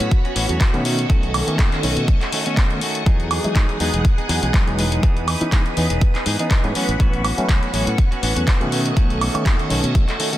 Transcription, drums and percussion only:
0.00 closed hi-hat soft
0.11 kick loud
0.11 closed hi-hat medium
0.25 closed hi-hat soft
0.36 open hi-hat loud
0.49 closed hi-hat medium
0.61 kick loud
0.61 clap loud
0.61 closed hi-hat medium
0.74 closed hi-hat soft
0.85 open hi-hat loud
0.99 closed hi-hat medium
1.10 kick loud
1.10 closed hi-hat medium
1.23 closed hi-hat soft
1.34 open hi-hat loud
1.34 high woodblock medium
1.48 closed hi-hat medium
1.59 kick loud
1.59 clap loud
1.59 closed hi-hat medium
1.72 clap soft
1.72 closed hi-hat soft
1.83 open hi-hat loud
1.97 closed hi-hat medium
2.08 kick loud
2.08 closed hi-hat medium
2.21 clap soft
2.21 closed hi-hat soft
2.32 open hi-hat loud
2.46 closed hi-hat medium
2.57 kick loud
2.57 clap loud
2.57 closed hi-hat medium
2.70 closed hi-hat soft
2.81 open hi-hat loud
2.95 closed hi-hat medium
3.06 kick loud
3.06 closed hi-hat medium
3.20 closed hi-hat soft
3.31 open hi-hat loud
3.31 high woodblock medium
3.44 closed hi-hat medium
3.56 kick loud
3.56 clap loud
3.56 closed hi-hat medium
3.69 closed hi-hat soft
3.80 open hi-hat loud
3.94 closed hi-hat soft
4.05 kick loud
4.05 closed hi-hat medium
4.18 closed hi-hat soft
4.29 open hi-hat loud
4.43 closed hi-hat soft
4.54 kick loud
4.54 clap loud
4.54 closed hi-hat soft
4.67 closed hi-hat soft
4.79 open hi-hat loud
4.92 closed hi-hat medium
5.03 kick loud
5.03 closed hi-hat medium
5.17 closed hi-hat soft
5.28 open hi-hat loud
5.28 high woodblock medium
5.41 closed hi-hat medium
5.52 kick loud
5.52 clap loud
5.52 closed hi-hat medium
5.66 closed hi-hat soft
5.77 open hi-hat loud
5.90 closed hi-hat medium
6.01 kick loud
6.01 closed hi-hat medium
6.15 clap soft
6.15 closed hi-hat soft
6.26 open hi-hat loud
6.39 closed hi-hat medium
6.51 kick loud
6.51 clap loud
6.51 closed hi-hat medium
6.64 closed hi-hat soft
6.75 open hi-hat loud
6.89 closed hi-hat medium
7.00 kick loud
7.00 closed hi-hat medium
7.13 closed hi-hat soft
7.25 open hi-hat medium
7.25 high woodblock medium
7.38 closed hi-hat medium
7.49 kick loud
7.49 clap loud
7.49 closed hi-hat medium
7.63 closed hi-hat soft
7.74 open hi-hat loud
7.87 closed hi-hat medium
7.98 kick loud
7.98 closed hi-hat medium
8.12 closed hi-hat soft
8.23 open hi-hat loud
8.36 closed hi-hat medium
8.47 kick loud
8.47 clap loud
8.47 closed hi-hat medium
8.61 closed hi-hat soft
8.72 open hi-hat loud
8.86 closed hi-hat medium
8.97 kick loud
8.97 closed hi-hat medium
9.10 closed hi-hat soft
9.21 open hi-hat medium
9.21 high woodblock medium
9.35 closed hi-hat medium
9.35 high woodblock medium
9.46 kick loud
9.46 clap loud
9.46 closed hi-hat medium
9.59 closed hi-hat soft
9.70 open hi-hat loud
9.84 closed hi-hat medium
9.95 kick loud
9.95 closed hi-hat medium
10.08 clap soft
10.08 closed hi-hat soft
10.20 open hi-hat loud
10.33 closed hi-hat medium

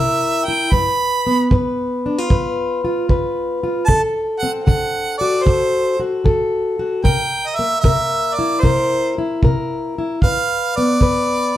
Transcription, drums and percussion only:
0.72 kick medium
1.51 kick medium
2.30 kick medium
3.09 kick medium
3.88 kick medium
4.68 kick medium
5.47 kick medium
6.26 kick medium
7.05 kick medium
7.84 kick medium
8.63 kick medium
9.43 kick medium
10.22 kick medium
11.01 kick medium

